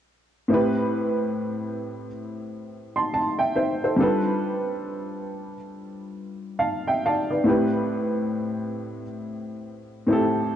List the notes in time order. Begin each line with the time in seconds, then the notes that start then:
0.48 A2 C4 E4
0.53 G4 B4
2.96 A5 C6
3.14 A5
3.38 E5 G5
3.56 C5 E5
3.84 A4 C5
3.96 G3 D4 F4
4.01 A4 B4
6.59 F5 A5
6.87 E5 G5
7.06 D5 F5 A5
7.30 B4 D5
7.44 A2 C4 E4
7.48 G4 B4
10.07 A2 C4 E4
10.11 G4 A4